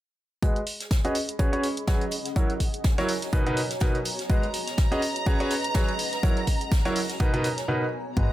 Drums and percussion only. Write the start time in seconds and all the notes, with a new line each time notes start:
0.43 kick, closed hi-hat
0.56 closed hi-hat
0.67 closed hi-hat, open hi-hat
0.80 snare, closed hi-hat
0.91 kick, snare, closed hi-hat
1.05 closed hi-hat
1.15 closed hi-hat, open hi-hat
1.29 closed hi-hat
1.39 kick, closed hi-hat
1.53 closed hi-hat
1.63 closed hi-hat, open hi-hat
1.77 closed hi-hat
1.87 kick, snare, closed hi-hat
2.01 closed hi-hat
2.11 closed hi-hat, open hi-hat
2.26 snare, closed hi-hat
2.36 kick, closed hi-hat
2.50 closed hi-hat
2.60 kick, closed hi-hat, open hi-hat
2.74 closed hi-hat
2.84 kick, snare, closed hi-hat
2.98 snare, closed hi-hat
3.08 open hi-hat
3.22 snare, closed hi-hat
3.33 kick, closed hi-hat
3.47 closed hi-hat
3.57 closed hi-hat, open hi-hat
3.70 snare, closed hi-hat
3.80 kick, snare, closed hi-hat
3.95 closed hi-hat
4.05 closed hi-hat, open hi-hat
4.19 snare, closed hi-hat
4.30 kick, closed hi-hat
4.43 closed hi-hat
4.54 closed hi-hat, open hi-hat
4.67 snare, closed hi-hat
4.78 kick, snare, closed hi-hat
4.92 closed hi-hat
5.02 closed hi-hat, open hi-hat
5.16 closed hi-hat
5.26 kick, closed hi-hat
5.40 closed hi-hat
5.51 closed hi-hat, open hi-hat
5.64 closed hi-hat
5.74 kick, snare, closed hi-hat
5.89 closed hi-hat
5.99 closed hi-hat, open hi-hat
6.13 snare, closed hi-hat
6.23 kick, closed hi-hat
6.37 closed hi-hat
6.47 kick, closed hi-hat, open hi-hat
6.61 closed hi-hat
6.72 kick, snare, closed hi-hat
6.85 snare, closed hi-hat
6.96 open hi-hat
7.09 snare, closed hi-hat
7.20 kick, closed hi-hat
7.34 closed hi-hat
7.44 closed hi-hat, open hi-hat
7.58 snare, closed hi-hat
8.17 kick, closed hi-hat